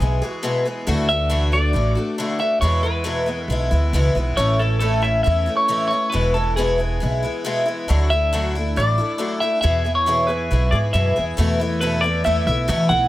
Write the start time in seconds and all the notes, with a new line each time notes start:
Already playing: G#4
0.00 B1 E3 G#3 B3 G#4
0.22 E3 G#3 B3 G#4
0.28 F#4
0.43 E2 B2 E3 G#3 B3 G#4
0.65 E3 G#3 B3 G#4
0.87 D2 D3 E3 A3 D4 F#4
1.09 E5
1.29 D3 E3 A3 D4 F#4
1.52 A3 D4 F#4 D5
1.73 A1 E3 A3 D4 F#4
1.95 A3 D4 F#4
2.18 D3 E3 A3 D4 F#4
2.39 A3 D4 F#4 E5
2.61 E2 B2 E3 G#3 B3 E4 C#5
2.83 E3 G#3 B3 E4 B4
3.04 E2 B2 E3 G#3 B3 E4
3.26 E3 G#3 B3 E4
3.44 A4
3.48 B1 E3 G#3 B3
3.52 E4
3.71 D2 E3 G#3 B3 E4
3.92 C#2 E2 B2 E3 G#3 B3 E4
4.15 B1 E3 G#3 B3 E4
4.37 A1 A2 E3 A3 C#4 E4 C#5
4.59 A3 C#4 E4 A4
4.79 A2 E3 A3 C#4 E4 A4
5.02 A3 C#4 E4 E5
5.23 E2 E3 A3 C#4 E4 E5
5.46 A3 C#4 E4
5.57 C#5
5.68 A2 E3 A3 C#4 E4
5.88 E4 C#5
5.92 C#4
6.10 E2 B2 E3 G#3 B4
6.14 E1 B3 E4
6.34 E3 G#3 B3 E4 A4
6.56 E2 B2 E3 G#3 B3 E4 G#4
6.78 E3 G#3 B3 E4
7.00 B1 E3 G#3 B3 E4
7.23 E3 G#3 B3 E4
7.45 E2 B2 E3 G#3 B3 E4
7.66 E3 G#3 B3 E4
7.88 D2 D3 F#3 A3 D4 E4
8.10 A3 E4 E5
8.33 D3 F#3 A3 D4 E4
8.55 A3 D4 E4
8.76 A1 F#3 A3 D4 E4 D5
8.98 A3 D4 E4
9.18 D3 F#3 A3 D4 E4
9.40 A3 D4 E4 E5
9.61 E2 B2 E3 B3 E4 G#4 E5
9.85 E3 B3 E4 G#4
9.95 C#5
10.06 E2 B2 E3 B3 E4 G#4
10.27 E3 B3 E4 G#4 B4
10.51 B1 E3 B3 E4 G#4
10.71 G#2 B3 E4 G#4 D5
10.75 E3
10.93 E2 F#2 B2 E3 B3 E4 G#4 E5
11.16 E2 E3 B3 E4 G#4
11.37 E2 B2 E3 A3 B3 E4
11.60 E3 A3 B3 E4
11.81 E2 B2 E3 A3 B3 E4 B4
12.01 A3 B3 E4 D5
12.06 E3
12.24 E2 E3 A3 B3 E4 E5
12.46 B1 E3 A3 B3 E4 E5
12.68 E2 B2 E3 A3 B3 E4
12.89 B1 E3 A3 B3 E4 F#5